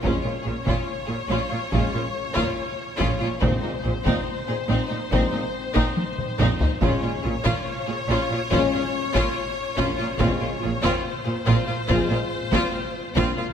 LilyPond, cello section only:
\new Staff \with { instrumentName = "Cello section" } { \clef bass \time 4/4 \key bes \minor \tempo 4 = 71 bes,16 bes,16 bes,16 bes,16 r16 bes,16 bes,16 bes,16 bes,16 bes,16 r16 bes,16 r8 bes,16 bes,16 | bes,16 bes,16 bes,16 bes,16 r16 bes,16 bes,16 bes,16 bes,16 bes,16 r16 bes,16 r8 bes,16 bes,16 | bes,16 bes,16 bes,16 bes,16 r16 bes,16 bes,16 bes,16 bes,16 bes,16 r16 bes,16 r8 bes,16 bes,16 | bes,16 bes,16 bes,16 bes,16 r16 bes,16 bes,16 bes,16 bes,16 bes,16 r16 bes,16 r8 bes,16 bes,16 | }